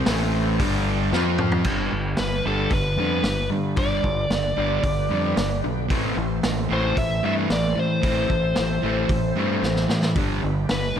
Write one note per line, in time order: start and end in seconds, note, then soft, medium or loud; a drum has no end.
0.06 0.56 A1 medium
0.06 0.60 A2 medium
0.06 0.60 E3 loud
0.06 0.60 A3 medium
0.06 0.60 C4 medium
0.06 0.60 E4 medium
0.06 0.60 C5 medium
0.06 snare loud
0.06 open hi-hat medium
0.59 1.09 G1 medium
0.59 1.12 G2 medium
0.59 1.12 D3 medium
0.59 1.13 G3 loud
0.59 1.14 D4 medium
0.59 1.13 G4 medium
0.59 1.13 D5 medium
0.59 kick loud
0.59 open hi-hat medium
1.12 1.62 F2 loud
1.12 1.65 F3 medium
1.12 1.66 C4 medium
1.12 1.66 F4 medium
1.12 1.66 F4 loud
1.12 1.66 C5 medium
1.12 snare medium
1.38 mid tom medium
1.52 floor tom medium
1.64 1.88 G1 medium
1.64 1.91 G2 medium
1.64 1.92 D3 medium
1.64 5.87 G3 medium
1.64 1.92 G3 medium
1.64 5.87 B3 medium
1.64 5.86 D4 medium
1.64 5.87 B4 medium
1.64 kick loud
1.64 crash medium
1.92 2.15 G1 medium
1.92 2.17 G2 medium
1.92 2.17 D3 medium
2.17 2.42 G1 medium
2.17 2.44 G2 medium
2.17 2.44 D3 medium
2.17 2.46 B4 loud
2.17 snare loud
2.17 open hi-hat soft
2.45 2.69 G1 medium
2.45 2.71 G2 medium
2.45 2.71 D3 medium
2.45 2.71 G3 medium
2.45 2.71 A4 medium
2.70 2.95 G1 medium
2.70 2.96 G2 medium
2.70 2.97 D3 medium
2.70 3.49 B4 medium
2.70 kick medium
2.70 open hi-hat soft
2.96 3.21 F2 medium
2.96 3.24 G2 medium
2.96 3.24 D3 medium
2.96 3.24 G3 medium
3.23 3.47 G1 medium
3.23 3.50 G2 medium
3.23 3.50 D3 medium
3.23 snare medium
3.23 open hi-hat medium
3.50 3.74 G2 medium
3.50 3.76 G2 medium
3.50 3.76 D3 medium
3.76 4.01 G1 medium
3.76 4.04 G2 medium
3.76 4.04 D3 medium
3.76 5.60 D5 medium
3.76 kick loud
3.76 open hi-hat soft
3.81 4.05 G3 medium
4.04 4.27 G1 medium
4.04 4.29 G2 medium
4.04 4.29 D3 medium
4.04 kick medium
4.30 4.54 G1 medium
4.30 4.55 G2 medium
4.30 4.56 D3 medium
4.30 snare medium
4.30 open hi-hat soft
4.56 4.81 G1 medium
4.56 4.82 G2 medium
4.56 4.82 D3 medium
4.56 4.83 G3 medium
4.83 5.07 G1 medium
4.83 5.08 G2 medium
4.83 5.08 D3 medium
4.83 kick loud
4.83 open hi-hat soft
5.10 5.34 F2 medium
5.10 5.36 G2 medium
5.10 5.37 D3 medium
5.10 5.37 G3 medium
5.36 5.60 G1 medium
5.36 5.62 G2 medium
5.36 5.62 D3 medium
5.36 snare loud
5.36 open hi-hat soft
5.64 5.90 B1 medium
5.64 5.88 G2 medium
5.64 5.88 D3 medium
5.88 6.13 A1 medium
5.88 6.15 A2 medium
5.88 6.15 E3 medium
5.88 10.12 A3 medium
5.88 6.16 A3 loud
5.88 6.16 C4 medium
5.88 10.12 C4 medium
5.88 10.12 E4 medium
5.88 10.12 C5 medium
5.88 kick loud
5.88 open hi-hat soft
6.17 6.40 A1 medium
6.17 6.41 A2 medium
6.17 6.41 E3 medium
6.43 6.67 A1 medium
6.43 6.68 A2 medium
6.43 6.68 E3 medium
6.43 snare loud
6.43 open hi-hat soft
6.69 6.94 A1 medium
6.69 6.95 A2 medium
6.69 6.95 E3 medium
6.69 6.96 A3 medium
6.69 6.96 C4 medium
6.73 6.97 C5 medium
6.97 7.20 A1 medium
6.97 7.21 A2 medium
6.97 7.21 E3 medium
6.97 7.22 E5 medium
6.97 kick medium
6.97 open hi-hat soft
7.23 7.47 G2 medium
7.23 7.48 A2 medium
7.23 7.48 E3 medium
7.23 7.49 A3 medium
7.23 7.49 C4 medium
7.23 7.32 E5 loud
7.49 7.73 A1 medium
7.49 7.74 A2 medium
7.49 7.74 E3 medium
7.49 7.79 D5 medium
7.49 snare loud
7.49 open hi-hat medium
7.75 8.00 A2 medium
7.75 8.00 E3 medium
7.79 9.87 C5 medium
8.02 8.26 A1 medium
8.02 8.27 A2 medium
8.02 8.28 E3 medium
8.02 8.29 A3 medium
8.02 8.28 C4 medium
8.02 kick loud
8.02 open hi-hat soft
8.29 8.53 A1 medium
8.29 8.53 A2 medium
8.29 8.53 E3 medium
8.29 kick medium
8.55 8.80 A1 medium
8.55 8.80 A2 medium
8.55 8.80 E3 medium
8.55 snare loud
8.55 open hi-hat soft
8.82 9.06 A1 medium
8.82 9.08 A2 medium
8.82 9.08 E3 medium
8.82 9.09 A3 loud
8.82 9.08 C4 medium
9.09 9.32 A1 medium
9.09 9.34 A2 medium
9.09 9.34 E3 medium
9.09 kick loud
9.09 open hi-hat soft
9.36 9.59 G2 medium
9.36 9.61 A2 medium
9.36 9.61 E3 medium
9.36 9.63 A3 medium
9.36 9.61 C4 medium
9.62 9.85 A1 medium
9.62 9.87 A2 medium
9.62 9.87 E3 medium
9.62 snare medium
9.76 snare medium
9.88 10.13 A2 medium
9.88 10.12 A2 medium
9.88 10.13 E3 medium
9.88 snare medium
10.02 snare medium
10.15 10.39 G1 medium
10.15 10.41 G2 medium
10.15 10.41 D3 medium
10.15 11.00 G3 medium
10.15 10.42 G3 medium
10.15 11.00 B3 medium
10.15 11.00 D4 medium
10.15 11.00 B4 medium
10.15 kick loud
10.15 open hi-hat soft
10.44 10.66 G1 medium
10.44 10.67 G2 medium
10.44 10.67 D3 medium
10.69 10.92 G1 medium
10.69 10.94 G2 medium
10.69 10.94 D3 medium
10.69 10.95 B4 loud
10.69 snare loud
10.69 open hi-hat soft
10.96 11.00 G1 medium
10.96 11.00 G2 medium
10.96 11.00 D3 medium